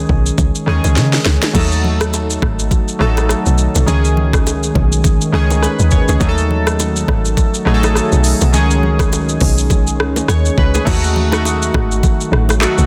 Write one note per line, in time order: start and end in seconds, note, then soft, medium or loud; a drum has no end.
0.00 0.25 D#3 medium
0.00 0.25 G#3 medium
0.00 0.25 C#4 medium
0.00 0.26 G#4 medium
0.09 0.31 B1 medium
0.09 kick medium
0.26 shaker medium
0.38 0.51 C#2 loud
0.38 kick loud
0.38 low conga medium
0.38 shaker medium
0.55 shaker soft
0.66 0.80 D#2 medium
0.66 1.45 D#3 medium
0.66 1.45 G#3 medium
0.66 1.45 C#4 medium
0.66 1.46 G#4 loud
0.66 cross-stick medium
0.84 0.98 C#2 loud
0.84 low bongo medium
0.84 shaker medium
0.96 1.18 C#3 loud
0.96 snare medium
0.96 high bongo medium
0.96 shaker medium
1.13 snare medium
1.13 shaker soft
1.25 1.38 C#2 medium
1.25 snare medium
1.42 snare medium
1.42 low bongo medium
1.42 shaker medium
1.53 2.38 D#2 loud
1.53 8.50 D#3 medium
1.53 2.58 F#3 medium
1.53 3.85 F#3 medium
1.53 2.58 A3 medium
1.53 3.85 A3 medium
1.53 2.58 D#4 medium
1.53 3.85 F#4 medium
1.53 2.59 A4 medium
1.53 kick loud
1.53 crash medium
1.53 low conga medium
1.53 shaker medium
1.72 shaker soft
1.84 low conga medium
2.01 cross-stick loud
2.01 high bongo medium
2.01 shaker medium
2.14 high bongo medium
2.14 shaker medium
2.30 shaker medium
2.42 2.76 G#1 medium
2.42 kick medium
2.42 cross-stick loud
2.42 low bongo medium
2.59 shaker medium
2.71 kick loud
2.71 high bongo medium
2.71 low conga medium
2.71 shaker medium
2.88 shaker soft
2.99 3.34 A1 loud
2.99 3.77 F#3 medium
2.99 3.78 A3 medium
2.99 3.78 D#4 medium
2.99 3.79 A4 loud
2.99 cross-stick loud
3.17 cross-stick medium
3.17 low bongo medium
3.17 shaker medium
3.29 cross-stick loud
3.29 high bongo medium
3.29 shaker medium
3.46 3.68 B1 medium
3.46 shaker soft
3.58 shaker medium
3.75 3.84 B1 medium
3.75 low bongo medium
3.75 shaker medium
3.86 4.71 C#2 loud
3.86 4.91 D#3 medium
3.86 4.91 G#3 medium
3.86 6.19 G#3 medium
3.86 6.18 C#4 medium
3.86 4.91 C#4 medium
3.86 6.18 G#4 medium
3.86 4.92 G#4 loud
3.86 low conga medium
3.86 shaker medium
4.05 shaker soft
4.17 low conga medium
4.33 kick loud
4.33 cross-stick loud
4.33 high bongo medium
4.33 shaker medium
4.47 high bongo medium
4.47 shaker medium
4.63 shaker medium
4.75 5.18 B1 medium
4.75 kick medium
4.75 low bongo medium
4.92 shaker medium
5.04 kick loud
5.04 high bongo medium
5.04 low conga medium
5.04 shaker medium
5.21 shaker soft
5.32 5.67 C#2 medium
5.32 6.11 D#3 medium
5.32 6.11 G#3 medium
5.32 6.11 C#4 medium
5.32 5.63 G#4 loud
5.32 cross-stick loud
5.50 low bongo medium
5.50 shaker medium
5.62 5.90 B4 medium
5.62 cross-stick medium
5.62 high bongo medium
5.62 shaker medium
5.79 6.01 D#2 medium
5.79 shaker medium
5.91 6.08 C#5 medium
5.91 kick medium
5.91 shaker medium
6.08 6.17 C#2 medium
6.08 6.21 G#4 medium
6.08 low bongo medium
6.08 shaker medium
6.20 7.04 D#2 loud
6.20 7.24 F#3 medium
6.20 8.51 F#3 medium
6.20 7.24 A3 medium
6.20 8.51 A3 medium
6.20 7.25 D#4 medium
6.20 8.51 F#4 medium
6.20 6.29 G#4 medium
6.20 kick loud
6.20 low conga medium
6.20 shaker medium
6.29 7.28 A4 medium
6.38 shaker soft
6.51 low conga medium
6.67 cross-stick loud
6.67 high bongo medium
6.67 shaker medium
6.80 high bongo medium
6.80 shaker medium
6.96 shaker medium
7.08 7.42 G#1 medium
7.08 kick medium
7.08 cross-stick loud
7.08 low bongo medium
7.25 shaker medium
7.37 kick loud
7.37 high bongo medium
7.37 low conga medium
7.37 shaker medium
7.54 shaker medium
7.65 8.00 A1 medium
7.65 8.44 F#3 medium
7.65 8.44 A3 medium
7.65 8.44 D#4 medium
7.65 7.75 G#4 medium
7.65 cross-stick loud
7.74 8.48 A4 loud
7.83 cross-stick medium
7.83 low bongo medium
7.83 shaker medium
7.95 cross-stick medium
7.95 high bongo medium
7.95 shaker medium
8.12 8.34 B1 medium
8.12 shaker medium
8.24 open hi-hat medium
8.24 shaker medium
8.41 8.55 B1 medium
8.41 low bongo medium
8.41 shaker medium
8.53 9.37 C#2 loud
8.53 9.57 D#3 medium
8.53 10.84 D#3 medium
8.53 9.57 G#3 medium
8.53 10.84 G#3 medium
8.53 10.84 C#4 medium
8.53 9.57 C#4 medium
8.53 10.84 G#4 medium
8.53 9.58 G#4 loud
8.53 low conga medium
8.53 shaker medium
8.71 shaker soft
8.83 low conga medium
8.99 kick loud
8.99 cross-stick loud
8.99 high bongo medium
8.99 shaker medium
9.13 high bongo medium
9.13 shaker medium
9.29 shaker medium
9.40 10.01 B1 medium
9.40 kick medium
9.40 open hi-hat medium
9.40 low bongo medium
9.58 shaker medium
9.70 kick loud
9.70 high bongo medium
9.70 low conga medium
9.70 shaker medium
9.87 shaker medium
9.99 10.21 C#2 medium
9.99 cross-stick loud
10.16 low bongo medium
10.16 shaker medium
10.28 10.50 D#2 medium
10.28 10.56 C#5 medium
10.28 cross-stick loud
10.28 high bongo medium
10.28 shaker medium
10.45 shaker medium
10.58 10.79 C#2 medium
10.58 10.74 B4 medium
10.58 kick loud
10.74 11.02 G#4 medium
10.74 low bongo medium
10.74 shaker medium
10.85 11.70 D#2 loud
10.85 12.86 D#3 medium
10.85 12.86 F#3 medium
10.85 11.25 A3 medium
10.85 12.86 A3 medium
10.85 11.26 D#4 medium
10.85 12.86 F#4 medium
10.85 11.27 F#4 loud
10.85 kick loud
10.85 crash loud
10.85 low conga medium
10.85 shaker medium
11.04 shaker soft
11.16 low conga medium
11.32 12.31 A3 medium
11.32 12.32 D#4 medium
11.32 12.32 F#4 loud
11.32 cross-stick loud
11.32 high bongo medium
11.32 low bongo medium
11.32 shaker medium
11.45 high bongo medium
11.45 shaker medium
11.62 shaker medium
11.74 12.08 G#1 medium
11.74 kick medium
11.74 cross-stick medium
11.74 low bongo medium
11.91 shaker medium
12.03 kick loud
12.03 high bongo medium
12.03 low conga medium
12.03 shaker medium
12.21 shaker medium
12.32 12.66 A1 loud
12.32 cross-stick loud
12.49 cross-stick loud
12.49 low bongo medium
12.49 shaker medium
12.60 12.86 A3 medium
12.60 12.86 D#4 medium
12.60 12.86 F#4 loud
12.60 cross-stick medium
12.60 clap loud
12.60 high bongo medium
12.60 shaker medium
12.78 12.86 B1 medium
12.78 shaker medium